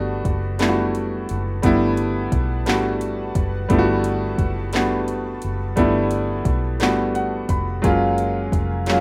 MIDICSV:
0, 0, Header, 1, 5, 480
1, 0, Start_track
1, 0, Key_signature, 1, "major"
1, 0, Tempo, 689655
1, 1138, Time_signature, 6, 3, 24, 8
1, 6267, End_track
2, 0, Start_track
2, 0, Title_t, "Analog synth pad"
2, 0, Program_c, 0, 89
2, 0, Note_on_c, 0, 55, 81
2, 0, Note_on_c, 0, 71, 71
2, 0, Note_on_c, 0, 78, 71
2, 0, Note_on_c, 0, 81, 87
2, 5426, Note_off_c, 0, 71, 0
2, 5426, Note_off_c, 0, 78, 0
2, 5427, Note_off_c, 0, 81, 0
2, 5428, Note_off_c, 0, 55, 0
2, 5453, Note_on_c, 0, 77, 73
2, 5454, Note_on_c, 0, 80, 84
2, 5455, Note_on_c, 0, 70, 70
2, 5459, Note_on_c, 0, 54, 75
2, 6267, Note_off_c, 0, 54, 0
2, 6267, Note_off_c, 0, 70, 0
2, 6267, Note_off_c, 0, 77, 0
2, 6267, Note_off_c, 0, 80, 0
2, 6267, End_track
3, 0, Start_track
3, 0, Title_t, "Grand piano"
3, 0, Program_c, 1, 0
3, 0, Control_c, 1, 64, 127
3, 0, Note_on_c, 1, 55, 89
3, 0, Note_on_c, 1, 57, 83
3, 0, Note_on_c, 1, 59, 81
3, 0, Note_on_c, 1, 62, 81
3, 0, Note_on_c, 1, 66, 102
3, 272, Note_off_c, 1, 55, 0
3, 275, Note_off_c, 1, 57, 0
3, 277, Note_off_c, 1, 59, 0
3, 281, Note_off_c, 1, 62, 0
3, 283, Note_off_c, 1, 66, 0
3, 410, Note_on_c, 1, 55, 78
3, 413, Note_on_c, 1, 57, 78
3, 419, Note_on_c, 1, 59, 73
3, 422, Note_on_c, 1, 62, 75
3, 432, Note_on_c, 1, 64, 71
3, 470, Note_off_c, 1, 64, 0
3, 477, Note_on_c, 1, 66, 88
3, 994, Note_off_c, 1, 55, 0
3, 995, Note_off_c, 1, 57, 0
3, 998, Note_off_c, 1, 59, 0
3, 1000, Note_off_c, 1, 62, 0
3, 1028, Note_off_c, 1, 66, 0
3, 1130, Note_on_c, 1, 55, 90
3, 1133, Note_on_c, 1, 57, 82
3, 1142, Note_on_c, 1, 59, 90
3, 1146, Note_on_c, 1, 62, 77
3, 1155, Note_on_c, 1, 64, 105
3, 1714, Note_off_c, 1, 55, 0
3, 1715, Note_off_c, 1, 57, 0
3, 1720, Note_off_c, 1, 59, 0
3, 1722, Note_off_c, 1, 62, 0
3, 1727, Note_off_c, 1, 64, 0
3, 1851, Note_on_c, 1, 55, 87
3, 1852, Note_on_c, 1, 57, 72
3, 1857, Note_on_c, 1, 59, 66
3, 1865, Note_on_c, 1, 62, 73
3, 1869, Note_on_c, 1, 66, 88
3, 2434, Note_off_c, 1, 55, 0
3, 2435, Note_off_c, 1, 57, 0
3, 2438, Note_off_c, 1, 59, 0
3, 2441, Note_off_c, 1, 62, 0
3, 2444, Note_off_c, 1, 66, 0
3, 2565, Note_on_c, 1, 55, 97
3, 2573, Note_on_c, 1, 57, 91
3, 2577, Note_on_c, 1, 59, 77
3, 2586, Note_on_c, 1, 62, 78
3, 2590, Note_on_c, 1, 64, 80
3, 2629, Note_off_c, 1, 64, 0
3, 2635, Note_on_c, 1, 66, 101
3, 3152, Note_off_c, 1, 55, 0
3, 3156, Note_off_c, 1, 57, 0
3, 3158, Note_off_c, 1, 59, 0
3, 3162, Note_off_c, 1, 62, 0
3, 3186, Note_off_c, 1, 66, 0
3, 3292, Note_on_c, 1, 55, 85
3, 3295, Note_on_c, 1, 57, 74
3, 3304, Note_on_c, 1, 59, 74
3, 3307, Note_on_c, 1, 62, 74
3, 3315, Note_on_c, 1, 66, 86
3, 3875, Note_off_c, 1, 55, 0
3, 3876, Note_off_c, 1, 57, 0
3, 3881, Note_off_c, 1, 59, 0
3, 3883, Note_off_c, 1, 62, 0
3, 3887, Note_off_c, 1, 66, 0
3, 4008, Note_on_c, 1, 55, 92
3, 4013, Note_on_c, 1, 57, 91
3, 4021, Note_on_c, 1, 59, 84
3, 4024, Note_on_c, 1, 62, 84
3, 4028, Note_on_c, 1, 64, 92
3, 4593, Note_off_c, 1, 55, 0
3, 4596, Note_off_c, 1, 57, 0
3, 4600, Note_off_c, 1, 59, 0
3, 4601, Note_off_c, 1, 62, 0
3, 4603, Note_off_c, 1, 64, 0
3, 4731, Note_on_c, 1, 55, 82
3, 4737, Note_on_c, 1, 57, 71
3, 4742, Note_on_c, 1, 59, 73
3, 4748, Note_on_c, 1, 62, 70
3, 4753, Note_on_c, 1, 66, 84
3, 4975, Note_on_c, 1, 78, 71
3, 5200, Note_off_c, 1, 78, 0
3, 5219, Note_on_c, 1, 83, 72
3, 5314, Note_off_c, 1, 55, 0
3, 5318, Note_off_c, 1, 57, 0
3, 5320, Note_off_c, 1, 59, 0
3, 5323, Note_off_c, 1, 62, 0
3, 5326, Note_off_c, 1, 66, 0
3, 5442, Note_off_c, 1, 83, 0
3, 5442, Note_on_c, 1, 54, 95
3, 5449, Note_on_c, 1, 56, 80
3, 5453, Note_on_c, 1, 58, 84
3, 5461, Note_on_c, 1, 61, 79
3, 5467, Control_c, 1, 64, 0
3, 5467, Note_on_c, 1, 65, 106
3, 5597, Control_c, 1, 64, 127
3, 6030, Note_off_c, 1, 54, 0
3, 6034, Note_off_c, 1, 56, 0
3, 6036, Note_off_c, 1, 58, 0
3, 6039, Note_off_c, 1, 61, 0
3, 6042, Note_off_c, 1, 65, 0
3, 6172, Note_on_c, 1, 54, 78
3, 6179, Note_on_c, 1, 56, 69
3, 6186, Note_on_c, 1, 58, 73
3, 6190, Note_on_c, 1, 61, 79
3, 6199, Note_on_c, 1, 65, 96
3, 6267, Note_off_c, 1, 54, 0
3, 6267, Note_off_c, 1, 56, 0
3, 6267, Note_off_c, 1, 58, 0
3, 6267, Note_off_c, 1, 61, 0
3, 6267, Note_off_c, 1, 65, 0
3, 6267, End_track
4, 0, Start_track
4, 0, Title_t, "Fingered electric bass"
4, 0, Program_c, 2, 33
4, 0, Note_on_c, 2, 31, 101
4, 154, Note_off_c, 2, 31, 0
4, 182, Note_on_c, 2, 30, 100
4, 872, Note_off_c, 2, 30, 0
4, 911, Note_on_c, 2, 30, 87
4, 1121, Note_off_c, 2, 30, 0
4, 1147, Note_on_c, 2, 31, 105
4, 1595, Note_off_c, 2, 31, 0
4, 1621, Note_on_c, 2, 35, 103
4, 1874, Note_off_c, 2, 35, 0
4, 1874, Note_on_c, 2, 31, 101
4, 2318, Note_off_c, 2, 31, 0
4, 2341, Note_on_c, 2, 30, 85
4, 2556, Note_off_c, 2, 30, 0
4, 2583, Note_on_c, 2, 31, 106
4, 3033, Note_off_c, 2, 31, 0
4, 3056, Note_on_c, 2, 30, 86
4, 3749, Note_off_c, 2, 30, 0
4, 3790, Note_on_c, 2, 30, 81
4, 4000, Note_off_c, 2, 30, 0
4, 4024, Note_on_c, 2, 31, 107
4, 4473, Note_off_c, 2, 31, 0
4, 4497, Note_on_c, 2, 35, 89
4, 4749, Note_off_c, 2, 35, 0
4, 4749, Note_on_c, 2, 31, 89
4, 5196, Note_off_c, 2, 31, 0
4, 5217, Note_on_c, 2, 29, 87
4, 5433, Note_off_c, 2, 29, 0
4, 5464, Note_on_c, 2, 30, 95
4, 5913, Note_off_c, 2, 30, 0
4, 5937, Note_on_c, 2, 29, 92
4, 6267, Note_off_c, 2, 29, 0
4, 6267, End_track
5, 0, Start_track
5, 0, Title_t, "Drums"
5, 174, Note_on_c, 9, 36, 89
5, 175, Note_on_c, 9, 42, 41
5, 244, Note_off_c, 9, 36, 0
5, 245, Note_off_c, 9, 42, 0
5, 411, Note_on_c, 9, 42, 59
5, 424, Note_on_c, 9, 39, 107
5, 481, Note_off_c, 9, 42, 0
5, 494, Note_off_c, 9, 39, 0
5, 660, Note_on_c, 9, 42, 45
5, 729, Note_off_c, 9, 42, 0
5, 897, Note_on_c, 9, 42, 50
5, 967, Note_off_c, 9, 42, 0
5, 1136, Note_on_c, 9, 42, 80
5, 1139, Note_on_c, 9, 36, 105
5, 1206, Note_off_c, 9, 42, 0
5, 1209, Note_off_c, 9, 36, 0
5, 1374, Note_on_c, 9, 42, 49
5, 1443, Note_off_c, 9, 42, 0
5, 1614, Note_on_c, 9, 36, 87
5, 1615, Note_on_c, 9, 42, 47
5, 1684, Note_off_c, 9, 36, 0
5, 1685, Note_off_c, 9, 42, 0
5, 1854, Note_on_c, 9, 42, 63
5, 1867, Note_on_c, 9, 39, 111
5, 1923, Note_off_c, 9, 42, 0
5, 1936, Note_off_c, 9, 39, 0
5, 2095, Note_on_c, 9, 42, 50
5, 2165, Note_off_c, 9, 42, 0
5, 2333, Note_on_c, 9, 42, 55
5, 2334, Note_on_c, 9, 36, 94
5, 2403, Note_off_c, 9, 36, 0
5, 2403, Note_off_c, 9, 42, 0
5, 2574, Note_on_c, 9, 42, 73
5, 2576, Note_on_c, 9, 36, 104
5, 2644, Note_off_c, 9, 42, 0
5, 2646, Note_off_c, 9, 36, 0
5, 2812, Note_on_c, 9, 42, 52
5, 2882, Note_off_c, 9, 42, 0
5, 3050, Note_on_c, 9, 36, 90
5, 3053, Note_on_c, 9, 42, 42
5, 3120, Note_off_c, 9, 36, 0
5, 3122, Note_off_c, 9, 42, 0
5, 3290, Note_on_c, 9, 42, 60
5, 3303, Note_on_c, 9, 39, 105
5, 3359, Note_off_c, 9, 42, 0
5, 3372, Note_off_c, 9, 39, 0
5, 3535, Note_on_c, 9, 42, 43
5, 3604, Note_off_c, 9, 42, 0
5, 3771, Note_on_c, 9, 42, 52
5, 3840, Note_off_c, 9, 42, 0
5, 4015, Note_on_c, 9, 42, 75
5, 4016, Note_on_c, 9, 36, 102
5, 4084, Note_off_c, 9, 42, 0
5, 4085, Note_off_c, 9, 36, 0
5, 4250, Note_on_c, 9, 42, 55
5, 4320, Note_off_c, 9, 42, 0
5, 4491, Note_on_c, 9, 36, 95
5, 4491, Note_on_c, 9, 42, 42
5, 4560, Note_off_c, 9, 36, 0
5, 4561, Note_off_c, 9, 42, 0
5, 4732, Note_on_c, 9, 42, 62
5, 4745, Note_on_c, 9, 39, 116
5, 4801, Note_off_c, 9, 42, 0
5, 4814, Note_off_c, 9, 39, 0
5, 4977, Note_on_c, 9, 42, 46
5, 5047, Note_off_c, 9, 42, 0
5, 5213, Note_on_c, 9, 36, 88
5, 5213, Note_on_c, 9, 42, 56
5, 5282, Note_off_c, 9, 36, 0
5, 5282, Note_off_c, 9, 42, 0
5, 5456, Note_on_c, 9, 36, 110
5, 5456, Note_on_c, 9, 42, 80
5, 5526, Note_off_c, 9, 36, 0
5, 5526, Note_off_c, 9, 42, 0
5, 5693, Note_on_c, 9, 42, 51
5, 5763, Note_off_c, 9, 42, 0
5, 5932, Note_on_c, 9, 36, 86
5, 5938, Note_on_c, 9, 42, 44
5, 6002, Note_off_c, 9, 36, 0
5, 6007, Note_off_c, 9, 42, 0
5, 6169, Note_on_c, 9, 42, 64
5, 6182, Note_on_c, 9, 39, 112
5, 6239, Note_off_c, 9, 42, 0
5, 6252, Note_off_c, 9, 39, 0
5, 6267, End_track
0, 0, End_of_file